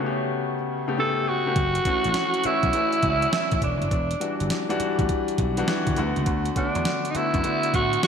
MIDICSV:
0, 0, Header, 1, 6, 480
1, 0, Start_track
1, 0, Key_signature, 2, "major"
1, 0, Tempo, 588235
1, 1275, Time_signature, 4, 2, 24, 8
1, 6585, End_track
2, 0, Start_track
2, 0, Title_t, "Tenor saxophone"
2, 0, Program_c, 0, 66
2, 814, Note_on_c, 0, 69, 98
2, 1050, Note_on_c, 0, 66, 104
2, 1063, Note_off_c, 0, 69, 0
2, 2007, Note_on_c, 0, 64, 107
2, 2019, Note_off_c, 0, 66, 0
2, 2961, Note_off_c, 0, 64, 0
2, 2966, Note_on_c, 0, 62, 77
2, 3648, Note_off_c, 0, 62, 0
2, 5369, Note_on_c, 0, 62, 86
2, 5796, Note_on_c, 0, 63, 76
2, 5808, Note_off_c, 0, 62, 0
2, 5847, Note_on_c, 0, 64, 108
2, 5859, Note_off_c, 0, 63, 0
2, 6323, Note_on_c, 0, 66, 99
2, 6335, Note_off_c, 0, 64, 0
2, 6557, Note_off_c, 0, 66, 0
2, 6585, End_track
3, 0, Start_track
3, 0, Title_t, "Grand piano"
3, 0, Program_c, 1, 0
3, 0, Control_c, 1, 64, 127
3, 0, Note_on_c, 1, 49, 80
3, 0, Note_on_c, 1, 57, 72
3, 0, Note_on_c, 1, 59, 75
3, 0, Note_on_c, 1, 66, 69
3, 0, Note_on_c, 1, 67, 68
3, 51, Note_off_c, 1, 67, 0
3, 51, Note_on_c, 1, 67, 84
3, 432, Note_off_c, 1, 49, 0
3, 434, Note_off_c, 1, 57, 0
3, 435, Note_off_c, 1, 59, 0
3, 463, Note_off_c, 1, 67, 0
3, 715, Note_on_c, 1, 49, 79
3, 716, Note_on_c, 1, 57, 76
3, 719, Note_on_c, 1, 59, 73
3, 723, Note_on_c, 1, 67, 92
3, 766, Note_off_c, 1, 49, 0
3, 766, Note_off_c, 1, 57, 0
3, 768, Note_off_c, 1, 59, 0
3, 770, Note_off_c, 1, 67, 0
3, 799, Note_on_c, 1, 49, 80
3, 800, Note_on_c, 1, 57, 77
3, 805, Note_on_c, 1, 59, 72
3, 808, Note_on_c, 1, 67, 89
3, 1027, Note_off_c, 1, 49, 0
3, 1027, Note_off_c, 1, 57, 0
3, 1030, Note_off_c, 1, 59, 0
3, 1031, Note_off_c, 1, 67, 0
3, 1194, Note_on_c, 1, 49, 73
3, 1196, Note_on_c, 1, 57, 68
3, 1197, Note_on_c, 1, 59, 70
3, 1201, Note_on_c, 1, 67, 87
3, 1277, Note_off_c, 1, 49, 0
3, 1277, Note_off_c, 1, 57, 0
3, 1278, Note_off_c, 1, 59, 0
3, 1280, Note_off_c, 1, 67, 0
3, 1285, Control_c, 1, 64, 0
3, 1288, Note_off_c, 1, 66, 0
3, 1456, Control_c, 1, 64, 127
3, 1515, Note_on_c, 1, 52, 73
3, 1519, Note_on_c, 1, 57, 72
3, 1523, Note_on_c, 1, 61, 65
3, 1526, Note_on_c, 1, 66, 76
3, 1833, Note_off_c, 1, 52, 0
3, 1836, Note_off_c, 1, 57, 0
3, 1837, Note_off_c, 1, 61, 0
3, 1839, Note_off_c, 1, 66, 0
3, 1994, Note_on_c, 1, 52, 78
3, 1996, Note_on_c, 1, 57, 68
3, 2003, Note_on_c, 1, 61, 67
3, 2006, Note_on_c, 1, 66, 81
3, 2172, Note_off_c, 1, 52, 0
3, 2173, Note_off_c, 1, 57, 0
3, 2176, Note_off_c, 1, 61, 0
3, 2178, Note_off_c, 1, 66, 0
3, 2234, Note_on_c, 1, 52, 69
3, 2237, Note_on_c, 1, 57, 62
3, 2240, Note_on_c, 1, 61, 62
3, 2246, Note_on_c, 1, 66, 71
3, 2871, Note_off_c, 1, 52, 0
3, 2872, Note_off_c, 1, 57, 0
3, 2874, Note_off_c, 1, 61, 0
3, 2877, Note_off_c, 1, 66, 0
3, 3204, Control_c, 1, 64, 0
3, 3350, Control_c, 1, 64, 127
3, 3429, Note_on_c, 1, 52, 59
3, 3429, Note_on_c, 1, 55, 54
3, 3435, Note_on_c, 1, 62, 59
3, 3437, Note_on_c, 1, 66, 69
3, 3662, Note_off_c, 1, 52, 0
3, 3662, Note_off_c, 1, 55, 0
3, 3665, Note_off_c, 1, 62, 0
3, 3666, Note_off_c, 1, 66, 0
3, 3828, Note_on_c, 1, 52, 91
3, 3832, Note_on_c, 1, 55, 89
3, 3837, Note_on_c, 1, 62, 89
3, 3838, Note_on_c, 1, 66, 105
3, 4271, Note_off_c, 1, 52, 0
3, 4273, Note_off_c, 1, 55, 0
3, 4276, Note_off_c, 1, 62, 0
3, 4276, Note_off_c, 1, 66, 0
3, 4548, Note_on_c, 1, 52, 92
3, 4553, Note_on_c, 1, 55, 91
3, 4557, Note_on_c, 1, 62, 83
3, 4557, Note_on_c, 1, 66, 103
3, 4602, Note_off_c, 1, 52, 0
3, 4605, Note_off_c, 1, 55, 0
3, 4606, Note_off_c, 1, 62, 0
3, 4607, Note_off_c, 1, 66, 0
3, 4632, Note_on_c, 1, 52, 96
3, 4633, Note_on_c, 1, 55, 86
3, 4637, Note_on_c, 1, 62, 82
3, 4640, Note_on_c, 1, 66, 104
3, 4863, Note_off_c, 1, 52, 0
3, 4864, Note_off_c, 1, 55, 0
3, 4866, Note_off_c, 1, 62, 0
3, 4867, Note_off_c, 1, 66, 0
3, 4875, Note_on_c, 1, 50, 90
3, 4880, Note_on_c, 1, 57, 76
3, 4881, Note_on_c, 1, 59, 78
3, 4886, Note_on_c, 1, 66, 107
3, 4887, Control_c, 1, 64, 0
3, 5037, Control_c, 1, 64, 127
3, 5288, Note_off_c, 1, 50, 0
3, 5290, Note_off_c, 1, 57, 0
3, 5291, Note_off_c, 1, 59, 0
3, 5293, Note_off_c, 1, 66, 0
3, 5354, Note_on_c, 1, 50, 73
3, 5358, Note_on_c, 1, 57, 70
3, 5360, Note_on_c, 1, 59, 70
3, 5362, Note_on_c, 1, 66, 87
3, 5673, Note_off_c, 1, 50, 0
3, 5675, Note_off_c, 1, 57, 0
3, 5676, Note_off_c, 1, 59, 0
3, 5677, Note_off_c, 1, 66, 0
3, 5833, Note_on_c, 1, 50, 73
3, 5836, Note_on_c, 1, 57, 67
3, 5839, Note_on_c, 1, 59, 73
3, 5841, Note_on_c, 1, 66, 84
3, 6011, Note_off_c, 1, 50, 0
3, 6013, Note_off_c, 1, 57, 0
3, 6014, Note_off_c, 1, 59, 0
3, 6015, Note_off_c, 1, 66, 0
3, 6071, Note_on_c, 1, 50, 70
3, 6073, Note_on_c, 1, 57, 68
3, 6078, Note_on_c, 1, 59, 61
3, 6081, Note_on_c, 1, 66, 71
3, 6585, Note_off_c, 1, 50, 0
3, 6585, Note_off_c, 1, 57, 0
3, 6585, Note_off_c, 1, 59, 0
3, 6585, Note_off_c, 1, 66, 0
3, 6585, End_track
4, 0, Start_track
4, 0, Title_t, "Slap bass"
4, 0, Program_c, 2, 36
4, 1272, Note_on_c, 2, 30, 91
4, 1453, Note_off_c, 2, 30, 0
4, 1674, Note_on_c, 2, 33, 92
4, 1736, Note_off_c, 2, 33, 0
4, 2150, Note_on_c, 2, 35, 85
4, 2213, Note_off_c, 2, 35, 0
4, 2474, Note_on_c, 2, 37, 83
4, 2653, Note_off_c, 2, 37, 0
4, 2873, Note_on_c, 2, 33, 92
4, 2935, Note_off_c, 2, 33, 0
4, 2954, Note_on_c, 2, 28, 90
4, 3071, Note_off_c, 2, 28, 0
4, 3112, Note_on_c, 2, 30, 78
4, 3174, Note_off_c, 2, 30, 0
4, 3195, Note_on_c, 2, 28, 90
4, 3374, Note_off_c, 2, 28, 0
4, 3595, Note_on_c, 2, 31, 82
4, 3656, Note_off_c, 2, 31, 0
4, 4072, Note_on_c, 2, 33, 79
4, 4134, Note_off_c, 2, 33, 0
4, 4394, Note_on_c, 2, 35, 88
4, 4574, Note_off_c, 2, 35, 0
4, 4792, Note_on_c, 2, 31, 95
4, 4854, Note_off_c, 2, 31, 0
4, 4873, Note_on_c, 2, 38, 101
4, 4990, Note_off_c, 2, 38, 0
4, 5031, Note_on_c, 2, 37, 80
4, 5094, Note_off_c, 2, 37, 0
4, 5113, Note_on_c, 2, 38, 95
4, 5293, Note_off_c, 2, 38, 0
4, 5511, Note_on_c, 2, 40, 88
4, 5574, Note_off_c, 2, 40, 0
4, 5989, Note_on_c, 2, 42, 90
4, 6052, Note_off_c, 2, 42, 0
4, 6315, Note_on_c, 2, 45, 77
4, 6494, Note_off_c, 2, 45, 0
4, 6585, End_track
5, 0, Start_track
5, 0, Title_t, "Muted slap bass strokes"
5, 2000, Note_on_c, 9, 29, 44
5, 2081, Note_off_c, 9, 29, 0
5, 3918, Note_on_c, 9, 29, 42
5, 3999, Note_off_c, 9, 29, 0
5, 5833, Note_on_c, 9, 29, 44
5, 5915, Note_off_c, 9, 29, 0
5, 6585, End_track
6, 0, Start_track
6, 0, Title_t, "Drums"
6, 1272, Note_on_c, 9, 36, 104
6, 1272, Note_on_c, 9, 42, 70
6, 1353, Note_off_c, 9, 42, 0
6, 1354, Note_off_c, 9, 36, 0
6, 1428, Note_on_c, 9, 42, 60
6, 1510, Note_off_c, 9, 42, 0
6, 1512, Note_on_c, 9, 36, 94
6, 1512, Note_on_c, 9, 42, 78
6, 1593, Note_off_c, 9, 36, 0
6, 1593, Note_off_c, 9, 42, 0
6, 1667, Note_on_c, 9, 42, 50
6, 1747, Note_on_c, 9, 38, 93
6, 1748, Note_off_c, 9, 42, 0
6, 1748, Note_on_c, 9, 42, 73
6, 1829, Note_off_c, 9, 38, 0
6, 1830, Note_off_c, 9, 42, 0
6, 1908, Note_on_c, 9, 42, 53
6, 1987, Note_off_c, 9, 42, 0
6, 1987, Note_on_c, 9, 42, 73
6, 2069, Note_off_c, 9, 42, 0
6, 2146, Note_on_c, 9, 42, 47
6, 2147, Note_on_c, 9, 36, 89
6, 2227, Note_off_c, 9, 42, 0
6, 2228, Note_on_c, 9, 42, 85
6, 2229, Note_off_c, 9, 36, 0
6, 2310, Note_off_c, 9, 42, 0
6, 2387, Note_on_c, 9, 42, 47
6, 2469, Note_off_c, 9, 42, 0
6, 2469, Note_on_c, 9, 42, 69
6, 2472, Note_on_c, 9, 36, 92
6, 2551, Note_off_c, 9, 42, 0
6, 2553, Note_off_c, 9, 36, 0
6, 2630, Note_on_c, 9, 42, 52
6, 2712, Note_off_c, 9, 42, 0
6, 2716, Note_on_c, 9, 38, 114
6, 2716, Note_on_c, 9, 42, 68
6, 2797, Note_off_c, 9, 38, 0
6, 2798, Note_off_c, 9, 42, 0
6, 2868, Note_on_c, 9, 42, 54
6, 2872, Note_on_c, 9, 36, 88
6, 2950, Note_off_c, 9, 42, 0
6, 2952, Note_off_c, 9, 36, 0
6, 2952, Note_on_c, 9, 36, 87
6, 2954, Note_on_c, 9, 42, 64
6, 3034, Note_off_c, 9, 36, 0
6, 3035, Note_off_c, 9, 42, 0
6, 3115, Note_on_c, 9, 42, 46
6, 3193, Note_on_c, 9, 36, 109
6, 3194, Note_off_c, 9, 42, 0
6, 3194, Note_on_c, 9, 42, 69
6, 3275, Note_off_c, 9, 36, 0
6, 3276, Note_off_c, 9, 42, 0
6, 3351, Note_on_c, 9, 42, 62
6, 3433, Note_off_c, 9, 42, 0
6, 3437, Note_on_c, 9, 42, 79
6, 3519, Note_off_c, 9, 42, 0
6, 3593, Note_on_c, 9, 42, 56
6, 3674, Note_off_c, 9, 42, 0
6, 3674, Note_on_c, 9, 38, 96
6, 3674, Note_on_c, 9, 42, 77
6, 3755, Note_off_c, 9, 38, 0
6, 3756, Note_off_c, 9, 42, 0
6, 3836, Note_on_c, 9, 42, 51
6, 3915, Note_off_c, 9, 42, 0
6, 3915, Note_on_c, 9, 42, 76
6, 3997, Note_off_c, 9, 42, 0
6, 4070, Note_on_c, 9, 36, 96
6, 4073, Note_on_c, 9, 42, 47
6, 4152, Note_off_c, 9, 36, 0
6, 4153, Note_off_c, 9, 42, 0
6, 4153, Note_on_c, 9, 42, 79
6, 4154, Note_on_c, 9, 36, 86
6, 4235, Note_off_c, 9, 42, 0
6, 4236, Note_off_c, 9, 36, 0
6, 4310, Note_on_c, 9, 42, 46
6, 4392, Note_off_c, 9, 42, 0
6, 4392, Note_on_c, 9, 42, 74
6, 4393, Note_on_c, 9, 36, 85
6, 4473, Note_off_c, 9, 42, 0
6, 4474, Note_off_c, 9, 36, 0
6, 4547, Note_on_c, 9, 42, 60
6, 4628, Note_off_c, 9, 42, 0
6, 4633, Note_on_c, 9, 38, 111
6, 4634, Note_on_c, 9, 42, 65
6, 4715, Note_off_c, 9, 38, 0
6, 4716, Note_off_c, 9, 42, 0
6, 4787, Note_on_c, 9, 42, 60
6, 4790, Note_on_c, 9, 36, 85
6, 4867, Note_off_c, 9, 42, 0
6, 4867, Note_on_c, 9, 42, 65
6, 4872, Note_off_c, 9, 36, 0
6, 4949, Note_off_c, 9, 42, 0
6, 5029, Note_on_c, 9, 42, 47
6, 5109, Note_off_c, 9, 42, 0
6, 5109, Note_on_c, 9, 42, 69
6, 5112, Note_on_c, 9, 36, 106
6, 5191, Note_off_c, 9, 42, 0
6, 5193, Note_off_c, 9, 36, 0
6, 5267, Note_on_c, 9, 42, 61
6, 5349, Note_off_c, 9, 42, 0
6, 5353, Note_on_c, 9, 36, 88
6, 5353, Note_on_c, 9, 42, 75
6, 5434, Note_off_c, 9, 36, 0
6, 5434, Note_off_c, 9, 42, 0
6, 5510, Note_on_c, 9, 42, 52
6, 5591, Note_off_c, 9, 42, 0
6, 5592, Note_on_c, 9, 38, 97
6, 5593, Note_on_c, 9, 42, 73
6, 5674, Note_off_c, 9, 38, 0
6, 5674, Note_off_c, 9, 42, 0
6, 5752, Note_on_c, 9, 42, 51
6, 5832, Note_off_c, 9, 42, 0
6, 5832, Note_on_c, 9, 42, 77
6, 5914, Note_off_c, 9, 42, 0
6, 5989, Note_on_c, 9, 36, 89
6, 5990, Note_on_c, 9, 42, 50
6, 6070, Note_off_c, 9, 42, 0
6, 6070, Note_on_c, 9, 42, 82
6, 6071, Note_off_c, 9, 36, 0
6, 6152, Note_off_c, 9, 42, 0
6, 6229, Note_on_c, 9, 42, 49
6, 6310, Note_off_c, 9, 42, 0
6, 6313, Note_on_c, 9, 36, 79
6, 6315, Note_on_c, 9, 42, 67
6, 6395, Note_off_c, 9, 36, 0
6, 6396, Note_off_c, 9, 42, 0
6, 6471, Note_on_c, 9, 42, 54
6, 6553, Note_off_c, 9, 42, 0
6, 6554, Note_on_c, 9, 38, 113
6, 6555, Note_on_c, 9, 42, 67
6, 6585, Note_off_c, 9, 38, 0
6, 6585, Note_off_c, 9, 42, 0
6, 6585, End_track
0, 0, End_of_file